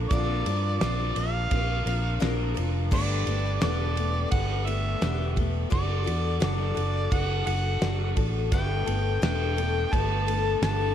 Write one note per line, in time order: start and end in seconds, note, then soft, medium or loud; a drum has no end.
0.00 0.11 F3 soft
0.00 0.12 C4 soft
0.00 0.12 D4 medium
0.00 0.11 A#4 medium
0.09 0.42 A#1 loud
0.09 0.47 A#2 medium
0.09 0.47 D3 loud
0.09 0.47 F3 medium
0.09 0.47 C4 loud
0.09 0.47 D4 loud
0.09 0.76 D5 loud
0.09 kick loud
0.09 ride loud
0.13 0.47 A#4 loud
0.46 0.77 G2 medium
0.46 0.82 C4 medium
0.46 0.82 D4 medium
0.46 0.82 A#4 medium
0.46 ride medium
0.50 0.81 F3 soft
0.79 1.12 A#1 medium
0.79 1.17 A#2 medium
0.79 1.17 F3 medium
0.79 1.18 D5 medium
0.79 snare loud
0.79 ride loud
0.83 1.17 D3 medium
0.83 1.17 C4 medium
0.83 1.16 D4 loud
0.83 1.16 A#4 loud
1.16 1.48 A#1 medium
1.16 1.50 F3 soft
1.16 1.51 C4 soft
1.16 1.52 D4 medium
1.16 1.52 A#4 medium
1.16 2.22 F5 loud
1.16 ride medium
1.51 1.82 A#1 medium
1.51 1.87 F3 medium
1.51 1.86 C4 medium
1.51 1.86 D4 medium
1.51 1.85 A#4 medium
1.51 kick loud
1.51 ride loud
1.86 2.17 A#1 medium
1.86 2.19 F3 soft
1.86 2.20 C4 soft
1.86 2.19 D4 soft
1.86 2.20 A#4 medium
1.86 ride medium
2.20 2.53 A#1 medium
2.20 2.56 A#2 medium
2.20 2.56 D3 medium
2.20 2.56 F3 medium
2.20 2.55 C4 medium
2.20 2.54 D4 medium
2.20 2.53 A#4 medium
2.20 snare loud
2.20 ride loud
2.54 2.92 F1 medium
2.54 2.91 F3 medium
2.54 2.92 C4 soft
2.54 2.91 D4 medium
2.54 2.91 A#4 medium
2.54 ride medium
2.91 3.23 G1 loud
2.91 3.27 G2 medium
2.91 3.27 D3 loud
2.91 3.27 A3 medium
2.91 3.27 B3 loud
2.91 3.26 D4 medium
2.91 3.25 G4 loud
2.91 3.59 D5 loud
2.91 kick loud
2.91 crash loud
3.26 3.58 G1 medium
3.26 3.61 A3 soft
3.26 3.60 B3 medium
3.26 3.61 D4 medium
3.26 3.61 G4 medium
3.26 ride medium
3.61 4.24 E1 loud
3.61 3.97 G2 medium
3.61 3.97 D3 medium
3.61 3.97 A3 medium
3.61 3.96 B3 medium
3.61 3.95 D4 medium
3.61 3.94 G4 medium
3.61 4.29 D5 medium
3.61 snare loud
3.61 ride loud
3.95 4.30 A3 soft
3.95 4.31 B3 soft
3.95 4.32 D4 medium
3.95 4.31 G4 medium
3.95 ride medium
4.31 4.94 G1 medium
4.31 4.67 A3 medium
4.31 4.66 B3 medium
4.31 4.66 D4 medium
4.31 4.65 G4 medium
4.31 4.68 F#5 loud
4.31 kick loud
4.31 ride loud
4.66 5.01 A3 soft
4.66 5.01 B3 soft
4.66 5.02 D4 medium
4.66 5.02 G4 soft
4.66 5.37 E5 loud
4.66 ride medium
5.01 5.64 E1 medium
5.01 5.37 G2 medium
5.01 5.37 D3 medium
5.01 5.37 A3 medium
5.01 5.36 B3 medium
5.01 5.35 D4 medium
5.01 5.35 G4 medium
5.01 snare loud
5.01 ride medium
5.36 5.70 A3 soft
5.36 5.70 B3 medium
5.36 5.69 D4 medium
5.36 5.71 G4 medium
5.36 kick medium
5.36 ride medium
5.70 6.03 F#1 loud
5.70 6.06 F#3 medium
5.70 6.06 D4 medium
5.70 6.05 F#4 medium
5.70 6.03 A4 loud
5.70 6.39 D5 loud
5.70 kick loud
5.70 ride loud
6.04 6.38 E2 medium
6.04 6.40 D4 soft
6.04 6.40 F#4 medium
6.04 6.41 A4 medium
6.04 ride medium
6.40 6.73 F#1 loud
6.40 6.76 F#3 medium
6.40 6.75 D4 medium
6.40 6.74 F#4 medium
6.40 6.73 A4 loud
6.40 7.13 D5 medium
6.40 snare loud
6.40 ride loud
6.75 7.08 F#1 medium
6.75 7.10 D4 soft
6.75 7.11 F#4 soft
6.75 7.11 A4 medium
6.75 ride medium
7.11 7.43 F#1 medium
7.11 7.46 F#3 medium
7.11 7.46 D4 medium
7.11 7.45 F#4 medium
7.11 7.43 A4 medium
7.11 7.46 F#5 loud
7.11 kick loud
7.11 ride loud
7.45 7.78 F#1 loud
7.45 7.80 D4 soft
7.45 7.81 F#4 soft
7.45 7.81 A4 soft
7.45 8.13 F#5 loud
7.45 ride medium
7.81 8.13 F#1 medium
7.81 8.17 F#3 medium
7.81 8.17 D4 medium
7.81 8.16 F#4 medium
7.81 8.15 A4 medium
7.81 snare loud
7.81 ride loud
8.16 8.48 A1 medium
8.16 8.52 D4 soft
8.16 8.52 F#4 medium
8.16 8.52 A4 medium
8.16 kick medium
8.16 ride medium
8.52 8.83 G1 loud
8.52 8.87 G2 loud
8.52 8.87 D3 loud
8.52 8.87 A3 medium
8.52 8.87 B3 medium
8.52 8.86 D4 medium
8.52 8.85 A4 loud
8.52 9.19 G5 loud
8.52 kick loud
8.52 ride loud
8.86 9.18 G1 medium
8.86 9.21 A3 medium
8.86 9.21 B3 medium
8.86 9.22 D4 medium
8.86 9.22 A4 medium
8.86 ride medium
9.22 9.84 E1 loud
9.22 9.57 G2 medium
9.22 9.57 D3 medium
9.22 9.57 A3 medium
9.22 9.57 B3 medium
9.22 9.57 D4 medium
9.22 9.56 A4 medium
9.22 9.95 G5 loud
9.22 snare loud
9.22 ride loud
9.57 9.91 A3 soft
9.57 9.92 B3 soft
9.57 9.92 D4 medium
9.57 9.92 A4 medium
9.57 ride medium
9.92 10.54 G1 medium
9.92 10.27 A3 medium
9.92 10.27 B3 medium
9.92 10.26 D4 medium
9.92 10.26 A4 medium
9.92 10.62 A5 loud
9.92 kick loud
9.92 ride loud
10.27 10.61 A3 soft
10.27 10.62 B3 soft
10.27 10.62 D4 soft
10.27 10.62 A4 medium
10.27 ride medium
10.62 10.95 G1 loud
10.62 10.95 G2 medium
10.62 10.95 D3 medium
10.62 10.95 A3 medium
10.62 10.95 B3 medium
10.62 10.95 D4 medium
10.62 10.95 A4 medium
10.62 10.95 A5 loud
10.62 snare loud
10.62 ride loud